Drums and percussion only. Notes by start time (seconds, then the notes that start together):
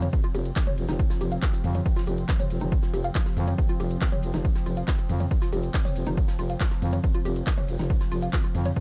0.02 closed hi-hat, mid tom, ride, shaker
0.13 kick, closed hi-hat, ride, shaker
0.24 closed hi-hat, ride, shaker
0.35 open hi-hat, ride, shaker
0.45 closed hi-hat, ride, shaker
0.56 kick, snare, clap, closed hi-hat, ride, shaker
0.67 closed hi-hat, mid tom, ride, shaker
0.78 open hi-hat, ride, shaker
0.88 snare, closed hi-hat, mid tom, ride, shaker
0.99 kick, closed hi-hat, ride, shaker
1.10 snare, closed hi-hat, ride, shaker
1.21 open hi-hat, ride, shaker
1.32 closed hi-hat, ride, shaker
1.42 kick, snare, clap, closed hi-hat, ride, shaker
1.53 closed hi-hat, ride, shaker
1.64 open hi-hat, mid tom, ride, shaker
1.75 closed hi-hat, mid tom, ride, shaker
1.85 kick, closed hi-hat, ride, shaker
1.96 snare, closed hi-hat, ride, shaker
2.07 open hi-hat, ride, shaker
2.18 closed hi-hat, ride, shaker
2.29 kick, snare, clap, closed hi-hat, ride, shaker
2.39 closed hi-hat, mid tom, ride, shaker
2.50 open hi-hat, ride, shaker
2.61 closed hi-hat, mid tom, ride, shaker
2.72 kick, closed hi-hat, ride, shaker
2.83 snare, closed hi-hat, ride, shaker
2.94 open hi-hat, ride, shaker
3.04 closed hi-hat, ride, shaker
3.14 kick, snare, clap, closed hi-hat, ride, shaker
3.26 snare, closed hi-hat, ride, shaker
3.37 open hi-hat, mid tom, ride, shaker
3.48 closed hi-hat, mid tom, ride, shaker
3.58 kick, closed hi-hat, ride, shaker
3.69 closed hi-hat, ride, shaker
3.80 open hi-hat, ride, shaker
3.91 closed hi-hat, ride, shaker
4.01 kick, snare, clap, closed hi-hat, ride, shaker
4.12 closed hi-hat, mid tom, ride, shaker
4.22 open hi-hat, ride, shaker
4.34 snare, closed hi-hat, mid tom, ride, shaker
4.45 kick, closed hi-hat, ride, shaker
4.55 snare, closed hi-hat, ride, shaker
4.66 open hi-hat, ride, shaker
4.77 closed hi-hat, ride, shaker
4.88 kick, snare, clap, closed hi-hat, ride, shaker
4.98 closed hi-hat, ride, shaker
5.09 open hi-hat, mid tom, ride, shaker
5.20 closed hi-hat, mid tom, ride, shaker
5.31 kick, closed hi-hat, ride, shaker
5.41 snare, closed hi-hat, ride, shaker
5.53 open hi-hat, ride, shaker
5.63 closed hi-hat, ride, shaker
5.74 kick, snare, clap, closed hi-hat, ride, shaker
5.85 closed hi-hat, mid tom, ride, shaker
5.96 open hi-hat, ride, shaker
6.07 closed hi-hat, mid tom, ride, shaker
6.17 kick, closed hi-hat, ride, shaker
6.28 snare, closed hi-hat, ride, shaker
6.38 open hi-hat, ride, shaker
6.50 closed hi-hat, ride, shaker
6.60 kick, snare, clap, closed hi-hat, ride, shaker
6.71 snare, closed hi-hat, ride, shaker
6.82 open hi-hat, mid tom, ride, shaker
6.93 closed hi-hat, mid tom, ride, shaker
7.03 kick, closed hi-hat, ride, shaker
7.14 closed hi-hat, ride, shaker
7.25 open hi-hat, ride, shaker
7.36 closed hi-hat, ride, shaker
7.47 kick, snare, clap, closed hi-hat, ride, shaker
7.58 closed hi-hat, mid tom, ride, shaker
7.68 open hi-hat, ride, shaker
7.79 snare, closed hi-hat, mid tom, ride, shaker
7.90 kick, closed hi-hat, ride, shaker
8.01 snare, closed hi-hat, ride, shaker
8.11 open hi-hat, ride, shaker
8.22 closed hi-hat, ride, shaker
8.33 kick, snare, clap, closed hi-hat, ride, shaker
8.44 closed hi-hat, ride, shaker
8.55 open hi-hat, mid tom, ride, shaker
8.66 closed hi-hat, mid tom, ride, shaker
8.76 kick, closed hi-hat, ride, shaker